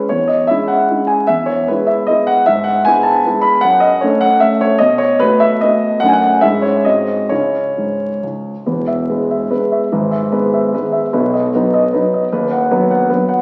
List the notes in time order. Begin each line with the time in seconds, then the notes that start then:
0.09 E2 C#5
0.28 D#5
0.47 G#3 C#4 E4 E5
0.68 F#5
0.90 G#3 C#4 E4
1.07 G#5
1.27 E2 E5
1.46 C#5
1.68 G#3 B3 E4 B4
1.87 E5
2.07 G#3 B3 E4 D#5
2.27 F#5
2.46 G#2 E5
2.64 F#5
2.85 G#3 B3 E4 G#5
3.03 A5
3.26 G#3 B3 E4
3.41 B5
3.61 F#2 F#5
3.80 D#5
4.01 A3 C#4 A4 C#5
4.21 F#5
4.40 A3 C#4 A4 E5
4.61 C#5
4.78 B2 D#5
4.98 C#5
5.20 A3 B3 F#4 B4
5.40 E5
5.61 A3 B3 F#4 D#5
6.00 F#2 A3 C#4 D#4 F#5
6.08 G#5
6.13 F#5
6.41 G#2 G#3 C#4 E4 E5
6.62 C#5
6.85 G#2 G#3 C4 F#4 D#5
7.29 C#3 C#4 E4 C#5
7.78 G#2
8.23 C#2
8.66 E1 E2 B4
8.87 E5
9.10 G#3 B3 B4
9.30 E5
9.51 G#3 B3 B4
9.72 E5
9.92 G#1 G#2 B4
10.11 E5
10.32 G#3 B3 B4
10.54 E5
10.73 G#3 B3 B4
10.92 E5
11.13 B1 B2 B4
11.33 D#5
11.54 F#3 B3 D#4 B4
11.74 D#5
11.93 F#3 B3 D#4 B4
12.14 D#5
12.32 D#1 D#2 B4
12.51 F#5
12.71 F#3 B3 B4
12.91 F#5
13.10 F#3 B3 B4
13.29 F#5